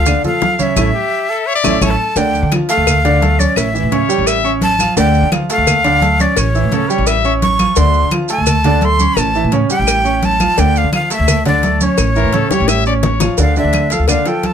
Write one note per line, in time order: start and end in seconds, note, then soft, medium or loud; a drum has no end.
0.00 0.14 D2 medium
0.00 0.22 F5 loud
0.06 0.20 D3 medium
0.06 0.21 D4 medium
0.06 0.21 D5 medium
0.06 high bongo medium
0.06 high conga soft
0.06 low conga medium
0.06 claves medium
0.06 maracas loud
0.24 0.53 F3 medium
0.24 0.53 F4 medium
0.24 0.53 A4 medium
0.24 0.64 F5 loud
0.24 high bongo soft
0.24 high conga soft
0.24 low conga medium
0.24 maracas soft
0.41 high bongo medium
0.41 low bongo medium
0.41 high conga medium
0.41 maracas soft
0.59 0.73 C#3 medium
0.59 0.73 C#4 medium
0.59 0.74 C#5 medium
0.59 1.83 E5 loud
0.59 high bongo soft
0.59 high conga medium
0.59 maracas medium
0.76 0.89 A1 loud
0.76 0.88 A3 loud
0.76 0.88 C#4 loud
0.76 0.88 E4 loud
0.76 low bongo loud
0.76 high conga medium
0.76 claves medium
0.76 maracas loud
0.94 1.31 G4 medium
1.30 1.48 A4 medium
1.47 1.54 C#5 loud
1.55 1.84 D5 loud
1.64 1.77 A1 medium
1.64 1.75 A3 loud
1.64 1.76 C#4 loud
1.64 1.75 E4 loud
1.64 low bongo loud
1.64 high conga loud
1.64 claves medium
1.64 maracas loud
1.81 1.94 A1 loud
1.81 1.93 A3 medium
1.81 1.93 C#4 medium
1.81 1.93 E4 medium
1.81 1.92 C#5 loud
1.81 2.19 A5 loud
1.81 low bongo loud
1.81 high conga loud
1.81 claves loud
1.81 maracas loud
1.91 2.17 A4 medium
2.16 2.41 D2 loud
2.16 2.45 D3 medium
2.16 2.46 D4 medium
2.16 2.46 D5 medium
2.16 2.52 G5 loud
2.16 cowbell loud
2.16 high conga soft
2.16 maracas medium
2.35 high conga soft
2.35 maracas soft
2.42 2.59 D3 medium
2.52 2.67 F3 medium
2.52 2.66 F4 medium
2.52 2.67 F5 medium
2.52 cowbell medium
2.52 high conga loud
2.52 claves medium
2.52 maracas soft
2.69 2.98 A3 medium
2.69 2.98 A4 medium
2.69 3.41 F5 loud
2.69 2.98 A5 medium
2.69 cowbell medium
2.69 high conga soft
2.69 maracas medium
2.77 3.44 D2 medium
2.87 cowbell loud
2.87 high conga soft
2.87 low conga medium
2.87 claves medium
2.87 maracas loud
3.05 3.19 D3 medium
3.05 3.19 D4 loud
3.05 3.19 D5 loud
3.05 cowbell medium
3.05 high conga soft
3.05 maracas soft
3.21 3.36 A3 medium
3.21 3.36 A4 medium
3.21 3.37 A5 medium
3.21 cowbell medium
3.21 high conga medium
3.21 maracas soft
3.39 3.68 C#4 medium
3.39 3.68 C#5 medium
3.39 3.58 D5 medium
3.39 3.68 C#6 medium
3.39 high conga medium
3.39 maracas medium
3.56 3.82 A1 loud
3.56 4.09 E5 medium
3.56 cowbell loud
3.56 claves medium
3.56 maracas loud
3.74 3.89 E3 medium
3.74 3.89 E4 medium
3.74 3.89 E5 medium
3.74 high conga soft
3.74 maracas soft
3.83 4.00 A2 medium
3.92 4.06 C#3 medium
3.92 4.06 C#4 medium
3.92 4.28 C#5 loud
3.92 4.06 C#5 medium
3.92 cowbell medium
3.92 high conga medium
3.92 maracas soft
4.09 4.38 G3 medium
4.09 4.38 G4 medium
4.09 4.38 G5 medium
4.09 high conga soft
4.09 maracas medium
4.18 4.85 A1 loud
4.27 4.53 E5 loud
4.27 cowbell loud
4.27 high conga soft
4.27 claves medium
4.27 maracas loud
4.43 4.73 C#4 medium
4.43 4.73 C#5 medium
4.43 4.73 C#6 medium
4.43 high conga soft
4.43 maracas soft
4.61 4.95 A5 loud
4.61 cowbell medium
4.61 high conga medium
4.61 maracas soft
4.79 4.94 F3 medium
4.79 4.94 F4 medium
4.79 4.94 F5 medium
4.79 cowbell medium
4.79 high conga medium
4.79 claves medium
4.79 maracas medium
4.96 5.22 D2 loud
4.96 5.25 D3 medium
4.96 5.26 D4 medium
4.96 5.26 D5 medium
4.96 5.30 G5 loud
4.96 cowbell loud
4.96 high conga soft
4.96 maracas medium
5.14 high conga soft
5.14 maracas soft
5.23 5.40 D3 medium
5.32 5.46 F3 medium
5.32 5.47 F4 medium
5.32 5.47 F5 medium
5.32 cowbell medium
5.32 high conga loud
5.32 claves medium
5.32 maracas soft
5.49 5.78 A3 medium
5.49 5.79 A4 medium
5.49 6.23 F5 loud
5.49 5.79 A5 medium
5.49 cowbell medium
5.49 high conga soft
5.49 maracas medium
5.58 6.25 D2 loud
5.67 cowbell loud
5.67 high conga soft
5.67 low conga medium
5.67 claves medium
5.67 maracas loud
5.84 5.99 D3 medium
5.84 5.99 D4 loud
5.84 5.99 D5 medium
5.84 cowbell medium
5.84 high conga soft
5.84 maracas soft
6.02 6.16 A3 medium
6.02 6.16 A4 medium
6.02 6.17 A5 medium
6.02 cowbell medium
6.02 high conga medium
6.02 maracas soft
6.20 6.48 C#4 medium
6.20 6.49 C#5 medium
6.20 6.40 D5 medium
6.20 6.49 C#6 medium
6.20 high conga medium
6.20 maracas medium
6.37 6.62 A1 loud
6.37 6.91 C#5 medium
6.37 cowbell loud
6.37 claves medium
6.37 maracas medium
6.55 6.69 E3 medium
6.55 6.69 E4 medium
6.55 6.69 E5 medium
6.55 high conga soft
6.55 maracas soft
6.63 6.80 A2 medium
6.72 6.87 C#3 medium
6.72 6.87 C#4 medium
6.72 6.91 A4 medium
6.72 6.87 C#5 medium
6.72 cowbell medium
6.72 high conga medium
6.72 maracas soft
6.90 7.18 G3 medium
6.90 7.19 G4 medium
6.90 7.09 C#5 medium
6.90 7.19 G5 medium
6.90 high conga soft
6.90 maracas medium
6.98 7.65 A1 loud
7.07 7.33 E5 loud
7.07 cowbell loud
7.07 high conga soft
7.07 claves medium
7.07 maracas loud
7.24 7.53 C#4 medium
7.24 7.54 C#5 medium
7.24 7.54 C#6 medium
7.24 high conga soft
7.24 maracas soft
7.42 7.79 C#6 loud
7.42 cowbell medium
7.42 high conga medium
7.42 maracas soft
7.59 7.74 F3 medium
7.59 7.74 F4 medium
7.59 7.74 F5 medium
7.59 cowbell medium
7.59 high conga medium
7.59 claves medium
7.59 maracas medium
7.76 8.02 D2 loud
7.76 8.06 D3 medium
7.76 8.06 D4 medium
7.76 8.06 D5 medium
7.76 8.13 C6 loud
7.76 cowbell loud
7.76 high conga soft
7.76 maracas medium
7.94 high conga soft
7.94 maracas soft
8.03 8.20 D3 medium
8.11 8.27 F3 medium
8.11 8.27 F4 medium
8.11 8.27 F5 medium
8.11 cowbell medium
8.11 high conga loud
8.11 claves medium
8.11 maracas soft
8.29 8.58 A3 medium
8.29 8.59 A4 medium
8.29 8.59 A5 medium
8.29 8.86 A5 loud
8.29 cowbell medium
8.29 high conga soft
8.29 maracas medium
8.38 9.05 D2 loud
8.46 cowbell loud
8.46 high conga soft
8.46 low conga medium
8.46 claves medium
8.46 maracas loud
8.64 8.79 D3 loud
8.64 8.80 D4 loud
8.64 8.80 D5 medium
8.64 cowbell medium
8.64 high conga soft
8.64 low conga medium
8.64 maracas soft
8.81 8.97 A3 medium
8.81 8.97 A4 medium
8.81 8.97 A5 medium
8.81 9.20 C6 loud
8.81 cowbell medium
8.81 high conga medium
8.81 maracas soft
8.99 9.29 C#4 medium
8.99 9.29 C#5 medium
8.99 9.29 C#6 medium
8.99 high conga medium
8.99 maracas medium
9.17 9.42 A1 loud
9.17 9.53 A5 loud
9.17 cowbell loud
9.17 high conga soft
9.17 claves medium
9.17 maracas medium
9.34 9.49 E3 medium
9.34 9.50 E4 medium
9.34 9.50 E5 medium
9.34 high conga soft
9.34 maracas soft
9.44 9.61 A2 medium
9.52 9.67 C#3 medium
9.52 9.67 C#4 medium
9.52 9.67 C#5 medium
9.52 cowbell medium
9.52 high conga medium
9.52 maracas soft
9.70 9.99 G3 medium
9.70 9.99 G4 medium
9.70 9.99 G5 medium
9.70 10.26 G5 loud
9.70 high conga soft
9.70 maracas medium
9.79 10.46 A1 loud
9.87 cowbell loud
9.87 high conga soft
9.87 claves medium
9.87 maracas loud
10.05 10.34 C#4 medium
10.05 10.34 C#5 medium
10.05 10.34 C#6 medium
10.05 high conga soft
10.05 maracas soft
10.23 10.61 A5 loud
10.23 cowbell medium
10.23 high conga medium
10.23 maracas soft
10.40 10.55 F3 medium
10.40 10.55 F4 medium
10.40 10.55 F5 medium
10.40 cowbell medium
10.40 high conga medium
10.40 claves medium
10.40 maracas medium
10.57 10.83 D2 loud
10.57 10.86 D3 medium
10.57 10.86 D4 medium
10.57 10.87 D5 medium
10.57 10.79 G5 loud
10.57 cowbell loud
10.57 high conga soft
10.57 maracas loud
10.75 10.93 F5 loud
10.75 high conga soft
10.75 maracas soft
10.84 11.01 D3 medium
10.93 11.07 F3 medium
10.93 11.07 F4 medium
10.93 11.07 F5 medium
10.93 11.10 F5 medium
10.93 cowbell medium
10.93 high conga medium
10.93 claves medium
10.93 maracas soft
11.10 11.39 A3 medium
11.10 11.39 A4 medium
11.10 11.44 E5 medium
11.10 11.40 A5 medium
11.10 cowbell medium
11.10 high conga soft
11.10 maracas medium
11.19 11.86 D2 loud
11.28 cowbell loud
11.28 high conga soft
11.28 low conga medium
11.28 claves medium
11.28 maracas loud
11.45 11.60 D3 loud
11.45 11.60 D4 medium
11.45 11.61 D5 medium
11.45 11.85 D5 medium
11.45 cowbell medium
11.45 high conga soft
11.45 low conga medium
11.45 maracas soft
11.63 11.78 A3 medium
11.63 11.78 A4 medium
11.63 11.78 A5 medium
11.63 cowbell medium
11.63 high conga medium
11.63 maracas soft
11.81 12.10 C#4 medium
11.81 12.10 C#5 medium
11.81 13.05 C#5 medium
11.81 12.10 C#6 medium
11.81 high conga medium
11.81 maracas medium
11.98 12.23 A1 loud
11.98 cowbell loud
11.98 claves medium
11.98 maracas medium
12.16 12.30 E3 medium
12.16 12.30 E4 medium
12.16 12.35 A#4 medium
12.16 12.30 E5 medium
12.16 high conga soft
12.16 maracas soft
12.25 12.41 A2 medium
12.33 12.48 C#3 medium
12.33 12.48 C#4 medium
12.33 12.51 A4 medium
12.33 12.48 C#5 medium
12.33 cowbell medium
12.33 high conga medium
12.33 maracas soft
12.51 12.80 G3 medium
12.51 12.80 G4 medium
12.51 12.70 C#5 loud
12.51 12.80 G5 medium
12.51 high bongo loud
12.51 high conga medium
12.51 maracas medium
12.60 13.26 A1 loud
12.68 12.86 E5 loud
12.68 cowbell loud
12.68 high bongo loud
12.68 claves medium
12.68 maracas loud
12.86 13.15 C#4 medium
12.86 13.15 C#5 medium
12.86 12.94 D5 medium
12.86 13.15 C#6 medium
12.86 maracas soft
13.03 13.36 C#5 medium
13.03 cowbell medium
13.03 low bongo medium
13.03 low conga loud
13.03 maracas soft
13.20 13.35 F3 medium
13.20 13.36 F4 medium
13.20 13.36 F5 medium
13.20 cowbell medium
13.20 low bongo loud
13.20 low conga medium
13.20 claves medium
13.20 maracas medium
13.38 13.63 D2 loud
13.38 13.53 D3 medium
13.38 13.53 D4 medium
13.38 13.54 D5 medium
13.38 13.56 F5 medium
13.38 cowbell loud
13.38 high conga soft
13.38 maracas medium
13.56 13.85 D3 medium
13.56 13.85 D4 medium
13.56 13.85 D5 medium
13.56 13.94 E5 medium
13.56 high conga soft
13.56 maracas soft
13.64 13.97 D2 medium
13.73 cowbell medium
13.73 high conga medium
13.73 claves medium
13.73 maracas soft
13.90 14.05 F3 medium
13.90 14.05 F4 medium
13.90 14.06 A4 medium
13.90 14.08 F5 medium
13.90 cowbell medium
13.90 high conga soft
13.90 maracas medium
13.99 14.16 D2 medium
14.08 14.23 D3 medium
14.08 14.23 D4 medium
14.08 14.23 D5 medium
14.08 14.29 F5 medium
14.08 cowbell loud
14.08 high conga soft
14.08 low conga medium
14.08 claves medium
14.08 maracas loud
14.25 14.53 F3 medium
14.25 14.53 F4 medium
14.25 14.53 A4 medium
14.25 14.48 G5 medium
14.25 cowbell medium
14.25 high conga soft
14.25 maracas soft
14.43 14.53 A5 loud
14.43 cowbell medium
14.43 high conga medium
14.43 maracas soft